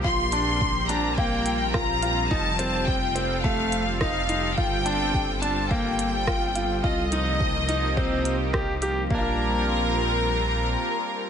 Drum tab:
HH |-x-x-x-x|-x-x-x-x|-x-x-x-x|-x-x-x-x|
SD |------r-|------r-|------r-|------r-|
BD |o-o-o-o-|o-o-o-o-|o-o-o-o-|o-o-o-o-|

HH |--------|
SD |--------|
BD |o-------|